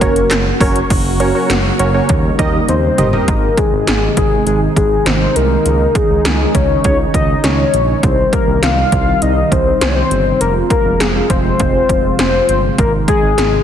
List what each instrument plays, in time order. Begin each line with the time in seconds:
Already playing: analog synth pad C#3 F#3 A#3 F#4, soft synth lead A#4
0.01 analog synth bass F#1, synth keys C#4 F#4 A#4 C#5, kick, closed hi-hat
0.16 closed hi-hat
0.31 analog synth bass F#1, snare, clap, closed hi-hat
0.61 analog synth bass F#1, synth keys C#4 F#4 A#4 C#5, kick, open hi-hat
0.76 closed hi-hat
0.90 analog synth bass F#1, analog synth pad C#3 F#3 A#3 F#4, kick, closed hi-hat, crash
1.20 synth keys C#4 F#4 A#4 C#5, closed hi-hat
1.35 synth keys C#4 F#4 A#4 C#5
1.50 analog synth bass F#1, snare, closed hi-hat
1.79 analog synth bass F#1, synth keys C#4 F#4 A#4 C#5, closed hi-hat
1.94 synth keys C#4 F#4 A#4 C#5
2.09 analog synth bass D#2, analog synth pad G3 D#4, kick, closed hi-hat
2.39 analog synth bass D#2, synth keys D#4 G4 A#4 D#5, kick, closed hi-hat
2.69 analog synth bass D#2, soft synth lead C5, closed hi-hat, high tom
2.98 analog synth bass G1, synth keys D#4 G4 A#4 D#5, closed hi-hat, mid tom
3.13 synth keys D#4 G4 A#4 D#5, floor tom
3.28 analog synth bass G#1, analog synth pad C3 D#3 G#3 D#4, soft synth lead A#4, kick, closed hi-hat
3.57 soft synth lead G#4, kick, closed hi-hat
3.73 analog synth bass G#1
3.87 analog synth bass G#1, snare, closed hi-hat
4.17 analog synth bass G#1, soft synth lead G#4, kick, closed hi-hat
4.47 analog synth bass G#1, soft synth lead G#4, closed hi-hat
4.76 analog synth bass G#1, soft synth lead G#4, kick, closed hi-hat
5.06 analog synth bass G#1, soft synth lead C5, snare, closed hi-hat
5.36 analog synth bass C2, soft synth lead A#4, closed hi-hat
5.66 analog synth bass C#2, analog synth pad C#3, closed hi-hat
5.95 soft synth lead G#4, kick, closed hi-hat
6.10 analog synth bass C#2
6.25 analog synth bass C#2, snare, closed hi-hat
6.55 analog synth bass C#2, soft synth lead C#5, kick, closed hi-hat
6.84 analog synth bass C#2, soft synth lead C#5, kick, closed hi-hat
7.14 analog synth bass C#2, soft synth lead D#5, kick, closed hi-hat
7.44 analog synth bass C#2, soft synth lead C#5, snare, closed hi-hat
7.73 analog synth bass A#1, closed hi-hat
8.03 analog synth bass C2, analog synth pad C3 D#3 G3, soft synth lead C5, kick, closed hi-hat
8.33 soft synth lead A#4, kick, closed hi-hat
8.48 analog synth bass C2
8.63 analog synth bass C2, soft synth lead F5, snare, closed hi-hat
8.92 analog synth bass C2, kick, closed hi-hat
9.22 analog synth bass C2, soft synth lead D#5, closed hi-hat
9.52 analog synth bass C2, soft synth lead C5, kick, closed hi-hat
9.81 analog synth bass C2, soft synth lead C5, snare, closed hi-hat
9.88 soft synth lead C#5
9.95 soft synth lead C5
10.11 analog synth bass G1, closed hi-hat
10.41 analog synth bass F1, analog synth pad F3 G#3 F4, soft synth lead A#4, closed hi-hat
10.70 soft synth lead A#4, kick, closed hi-hat
10.85 analog synth bass F1
11.00 analog synth bass F1, soft synth lead G#4, snare, closed hi-hat
11.30 analog synth bass F1, soft synth lead C5, kick, closed hi-hat
11.60 analog synth bass F1, kick, closed hi-hat
11.89 analog synth bass F1, kick, closed hi-hat
12.19 analog synth bass F1, soft synth lead C5, snare, closed hi-hat
12.49 analog synth bass G1, soft synth lead C5, closed hi-hat
12.78 analog synth bass G#1, analog synth pad D#3 G#3 D#4, soft synth lead A#4, kick, closed hi-hat
13.08 soft synth lead G#4, kick, closed hi-hat
13.23 analog synth bass G#1
13.38 analog synth bass G#1, snare, closed hi-hat